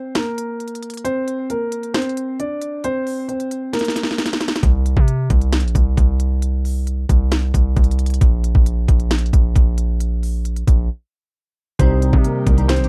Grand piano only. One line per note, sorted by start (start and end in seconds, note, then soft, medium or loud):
0.00 0.13 C4 medium
0.00 0.13 C5 medium
0.16 1.01 A#3 medium
0.16 1.01 A#4 medium
1.04 1.47 C4 medium
1.04 1.47 C5 loud
1.50 1.92 A#3 medium
1.50 1.92 A#4 medium
1.94 2.37 C4 medium
1.94 2.36 C5 medium
2.40 2.82 D4 medium
2.40 2.82 D5 medium
2.84 3.27 C4 medium
2.84 3.26 C5 loud
3.28 3.71 C4 medium
3.28 3.71 C5 medium
3.73 4.59 A#3 medium
3.73 4.59 A#4 loud
11.79 12.22 C4 medium
11.79 12.21 C5 loud
12.24 12.67 A#3 medium
12.24 12.66 A#4 medium
12.68 12.89 C4 medium
12.68 12.89 C5 loud